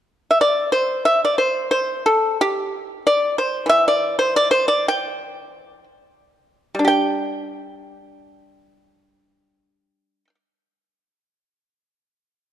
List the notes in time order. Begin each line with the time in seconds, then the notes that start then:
0.31 E5
0.41 D5
0.72 C5
1.05 E5
1.25 D5
1.38 C5
1.71 C5
2.06 A4
2.41 G4
3.07 D5
3.38 C5
3.66 E3 E5
3.88 D5
4.19 C5
4.36 D5
4.51 C5
4.68 D5
4.88 G5
6.75 G3
6.79 D4
6.85 G4 G5